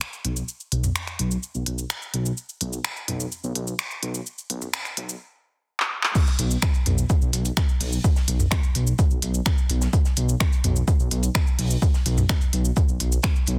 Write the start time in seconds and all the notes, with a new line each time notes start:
0.01 finger snap, shaker
0.13 shaker
0.25 B1, closed hi-hat
0.36 shaker
0.48 shaker
0.60 shaker
0.72 B1, closed hi-hat
0.84 mid tom, shaker
0.96 finger snap, shaker
1.07 finger snap, shaker
1.19 B1, closed hi-hat
1.31 shaker
1.43 shaker
1.55 B1, shaker
1.66 B1, closed hi-hat
1.78 shaker
1.90 finger snap, shaker
2.02 shaker
2.14 B1, closed hi-hat
2.26 shaker
2.37 shaker
2.49 shaker
2.61 B1, closed hi-hat
2.73 shaker
2.85 finger snap, shaker
2.96 shaker
3.08 B1, closed hi-hat, mid tom
3.20 shaker
3.32 shaker
3.44 B1, shaker
3.55 B1, closed hi-hat
3.67 shaker
3.79 finger snap, shaker
3.91 shaker
4.03 B1, closed hi-hat
4.14 shaker
4.26 shaker
4.38 shaker
4.50 B1, closed hi-hat
4.62 mid tom, shaker
4.74 finger snap, shaker
4.85 finger snap, shaker
4.97 B1, closed hi-hat
5.09 shaker
5.80 clap
6.03 clap
6.15 kick, crash, shaker
6.27 snare, shaker
6.39 B1, closed hi-hat, shaker
6.51 shaker
6.62 finger snap, kick, snare, shaker
6.74 closed hi-hat, shaker
6.86 B1, closed hi-hat, mid tom, shaker
6.98 shaker
7.09 kick, shaker
7.22 B1, shaker
7.33 B1, closed hi-hat, shaker
7.45 closed hi-hat, shaker
7.57 finger snap, kick, snare, shaker
7.69 shaker
7.80 B1, closed hi-hat, open hi-hat
7.93 shaker
8.04 kick, shaker
8.16 snare, shaker
8.28 B1, closed hi-hat, shaker
8.40 mid tom, shaker
8.51 finger snap, kick, snare, shaker
8.63 closed hi-hat, shaker
8.75 B1, closed hi-hat, shaker
8.87 shaker
8.99 kick, shaker
9.11 B1, shaker
9.22 B1, closed hi-hat, shaker
9.34 shaker
9.46 finger snap, kick, snare, shaker
9.58 shaker
9.70 B1, closed hi-hat, shaker
9.82 snare, shaker
9.93 kick, shaker
10.05 snare, shaker
10.17 B1, closed hi-hat, shaker
10.29 shaker
10.40 finger snap, kick, snare, shaker
10.52 closed hi-hat, shaker
10.64 B1, closed hi-hat, mid tom, shaker
10.76 shaker
10.88 kick, shaker
10.99 B1, shaker
11.11 B1, closed hi-hat, shaker
11.23 closed hi-hat, shaker
11.35 finger snap, kick, snare, shaker
11.47 shaker
11.59 B1, closed hi-hat, open hi-hat
11.71 shaker
11.82 kick, shaker
11.94 snare, shaker
12.06 B1, closed hi-hat, shaker
12.18 mid tom, shaker
12.29 finger snap, kick, snare, shaker
12.41 closed hi-hat, shaker
12.53 B1, closed hi-hat, shaker
12.65 shaker
12.76 kick, shaker
12.88 B1, shaker
13.00 B1, closed hi-hat, shaker
13.12 shaker
13.23 finger snap, kick, snare, shaker
13.36 shaker
13.46 B1, closed hi-hat, shaker